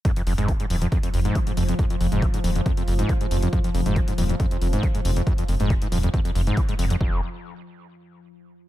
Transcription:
<<
  \new Staff \with { instrumentName = "Ambient pad" } { \clef bass \time 4/4 \key f \minor \tempo 4 = 138 f1~ | f1~ | f1~ | f1 |
r1 | }
  \new Staff \with { instrumentName = "Acid bass" } { \clef bass \time 4/4 \key f \minor f,16 f,16 f,16 aes,16 aes16 aes,16 f,16 f,16 f,16 f,16 f,16 aes,16 aes16 aes,16 f,16 f,16 | f,16 f,16 f,16 aes,16 aes16 aes,16 f,16 f,16 f,16 f,16 f,16 aes,16 aes16 aes,16 f,16 f,16 | f,16 f,16 f,16 aes,16 aes16 aes,16 f,16 f,16 f,16 f,16 f,16 aes,16 aes16 aes,16 f,16 f,16 | f,16 f,16 f,16 aes,16 aes16 aes,16 f,16 f,16 f,16 f,16 f,16 aes,16 aes16 aes,16 f,16 f,16 |
f,8 r2. r8 | }
  \new Staff \with { instrumentName = "Detuned saw bass" } { \clef bass \time 4/4 \key f \minor r8 f,,16 f,,16 r8 ees,,16 r8. f,,16 r8. f,,16 r16 | r8 f,,16 f,,16 r8 ees,,16 r8. f,,16 r8. f,,16 r16 | r8 f,,16 f,,16 r8 ees,,16 r8. f,,16 r8. f,,16 r16 | r8 f,,16 f,,16 r8 ees,,16 r8. f,,16 r8. f,,16 r16 |
f,,8 r2. r8 | }
  \new DrumStaff \with { instrumentName = "Drums" } \drummode { \time 4/4 <hh bd>16 hh16 hho16 hh16 <hh bd>16 hh16 hho16 hh16 <hh bd>16 hh16 hho16 hh16 <hh bd>16 hh16 hho16 hh16 | <hh bd>16 hh16 hho16 hh16 <hh bd>16 hh16 hho16 hh16 <hh bd>16 hh16 hho16 hh16 <hh bd>16 hh16 hho16 hh16 | <hh bd>16 hh16 hho16 hh16 <hh bd>16 hh16 hho16 hh16 <hh bd>16 hh16 hho16 hh16 <hh bd>16 hh16 hho16 hh16 | <hh bd>16 hh16 hho16 hh16 <hh bd>16 hh16 hho16 hh16 <hh bd>16 hh16 hho16 hh16 <hh bd>16 hh16 hho16 hh16 |
bd4 r4 r4 r4 | }
>>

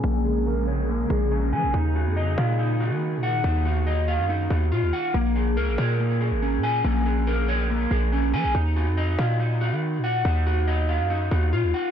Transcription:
<<
  \new Staff \with { instrumentName = "Clean electric guitar" } { \time 4/4 \key bes \minor \tempo 4 = 141 <bes des' aes' aes''>8 aes'8 bes'8 des''8 bes8 aes'8 des'8 aes''8 | ees'8 ges'8 ees''8 f''8 ees'8 ges'4 ges''8 | ees'8 ges'8 ees''8 f''8 ees'8 ges'8 f'8 ges''8 | bes8 aes'8 bes'8 des''8 bes8 aes'8 des'8 aes''8 |
bes8 aes'8 bes'8 des''8 bes8 aes'8 des'8 aes''8 | ees'8 ges'8 ees''8 f''8 ees'8 ges'4 ges''8 | ees'8 ges'8 ees''8 f''8 ees'8 ges'8 f'8 ges''8 | }
  \new Staff \with { instrumentName = "Ambient pad" } { \clef bass \time 4/4 \key bes \minor << { <bes aes'>1~ | <bes aes'>1~ | <bes aes'>1 | r1 |
r1 | r1 | r1 | } \\ { <des aes>1 | ees1~ | ees1 | r1 |
r1 | r1 | r1 | } >> }
  \new Staff \with { instrumentName = "808-style bass" } { \clef bass \time 4/4 \key bes \minor bes,,2~ bes,,8 bes,,4 f16 bes,,16 | ees,8. f,8. bes,4~ bes,16 ees8~ ees32 bes,8~ bes,32 | ees,4.~ ees,16 ges,8. ees,8 bes,16 ees,16 r8 | bes,,4 des,16 bes,,16 bes,4~ bes,16 aes,,8~ aes,,32 bes,8~ bes,32 |
bes,,2~ bes,,8 bes,,4 f16 bes,,16 | ees,8. f,8. bes,4~ bes,16 ees8~ ees32 bes,8~ bes,32 | ees,4.~ ees,16 ges,8. ees,8 bes,16 ees,16 r8 | }
>>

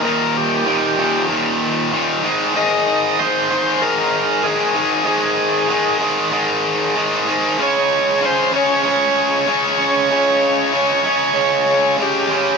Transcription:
<<
  \new Staff \with { instrumentName = "Tonewheel organ" } { \time 4/4 \key aes \major \tempo 4 = 95 bes'8 g'4. r2 | ees''4 c''4 bes'4 aes'4 | aes'4. r2 r8 | des''4 c''8 des''2~ des''8~ |
des''2. g'4 | }
  \new Staff \with { instrumentName = "Distorted electric guitar" } { \clef bass \time 4/4 \key aes \major <ees, bes, ees>4 <ees, bes, ees>8 <ees, bes, ees>8 <ees, bes, ees>4 <ees, bes, ees>8 <aes, ees aes>8 | <aes, ees aes>4 <aes, ees aes>8 <aes, ees aes>8 <aes, ees aes>4 <aes, ees aes>8 <aes, ees aes>8 | <aes, ees aes>4 <aes, ees aes>8 <aes, ees aes>8 <aes, ees aes>4 <aes, ees aes>8 <aes, ees aes>8 | <des aes des'>4 <des aes des'>8 <des aes des'>8 <des aes des'>4 <des aes des'>8 <des aes des'>8 |
<des aes des'>4 <des aes des'>8 <des aes des'>8 <des aes des'>4 <des aes des'>8 <des aes des'>8 | }
>>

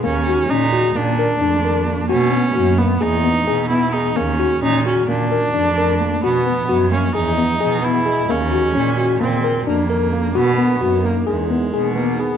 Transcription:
<<
  \new Staff \with { instrumentName = "Ambient pad" } { \time 9/8 \key ees \phrygian \tempo 4. = 87 << { r1 r8 | r1 r8 | r1 r8 | dis''1~ dis''8 |
r1 r8 | dis'1~ dis'8 | } \\ { r1 r8 | r1 r8 | r2 f2~ f8~ | f2 r2 r8 |
r2 bes'2~ bes'8~ | bes'2 r2 r8 | } >> }
  \new Staff \with { instrumentName = "Tine electric piano" } { \time 9/8 \key ees \phrygian bes8 ges'8 des'8 ges'8 bes8 bes'8 d'8 bes'8 bes8 | fis'8 b8 fis'8 ais8 gis'8 b8 gis'8 b8 gis'8 | bes8 ges'8 des'8 ges'8 bes8 bes'8 d'8 bes'8 bes8 | fis'8 b8 fis'8 ais8 gis'8 b8 gis'8 b8 gis'8 |
bes8 ges'8 des'8 ges'8 bes8 bes'8 d'8 bes'8 bes8 | fis'8 b8 fis'8 ais8 gis'8 b8 gis'8 b8 gis'8 | }
  \new Staff \with { instrumentName = "Viola" } { \time 9/8 \key ees \phrygian des'4 ees'4 d'2~ d'8 | des'4. b8 dis'4. e'8 dis'8 | des'4 ees'8 des'8 d'2~ d'8 | b4. des'8 dis'4. e'4 |
des'2 c'4 bes4. | b4. ais8 gis4. bes8 b8 | }
  \new Staff \with { instrumentName = "Cello" } { \clef bass \time 9/8 \key ees \phrygian ees,4 bes,4 bes,4 f,4. | b,4 fis,4 e,4 b,4. | ees,4 bes,4 bes,4 f,4. | b,4 fis,4 e,4 b,4. |
ees,4 bes,4 bes,4 f,4. | b,4 fis,4 e,4 b,4. | }
>>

